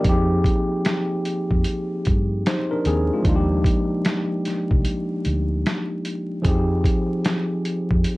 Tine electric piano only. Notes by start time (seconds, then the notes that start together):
Already playing: A#3
0.03 F3 G3 C4
0.07 D#4 G4 G#4
2.47 D#4 C5
2.71 D4 A#4
2.87 C4 G#4
3.13 G#3 F4
3.23 F3 A#3 D4
3.27 D#4 F4
3.36 G4
6.42 F3 C4 G#4
6.47 D#4 G4